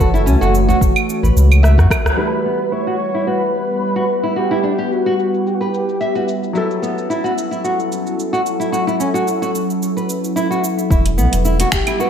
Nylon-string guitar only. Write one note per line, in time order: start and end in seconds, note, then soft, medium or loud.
0.00 0.13 F#4 medium
0.14 0.21 E4 loud
0.26 0.35 C#4 medium
0.41 0.54 F#4 loud
0.68 0.76 F#4 loud
1.23 1.35 B4 medium
1.63 1.77 E5 loud
1.78 1.85 F#4 loud
2.18 2.32 E4 medium
2.45 2.59 B3 medium
2.72 2.86 E4 medium
2.87 2.94 F#4 medium
3.14 3.27 E4 medium
3.27 3.41 F#4 medium
3.96 4.03 F#4 medium
4.23 4.36 E4 medium
4.36 4.50 F#4 medium
4.51 4.58 E4 medium
4.63 4.72 D4 medium
4.78 4.90 G4 medium
5.06 5.13 F#4 medium
5.61 5.72 B4 medium
6.01 6.14 E5 medium
6.15 6.22 F#4 medium
6.55 6.69 E4 medium
6.82 6.96 B3 medium
7.10 7.23 E4 medium
7.24 7.31 F#4 medium
7.51 7.63 E4 medium
7.64 7.78 F#4 medium
8.33 8.40 F#4 medium
8.60 8.72 E4 medium
8.72 8.87 F#4 medium
8.87 8.95 E4 medium
9.00 9.08 C#4 medium
9.14 9.26 F#4 medium
9.42 9.49 F#4 medium
9.97 10.09 B4 medium
10.36 10.49 E4 medium
10.51 10.62 F#4 medium
10.90 11.05 E4 medium
11.18 11.32 B3 medium
11.45 11.59 E4 medium
11.60 11.67 F#4 loud
11.87 11.99 E4 medium
12.00 12.10 F#4 medium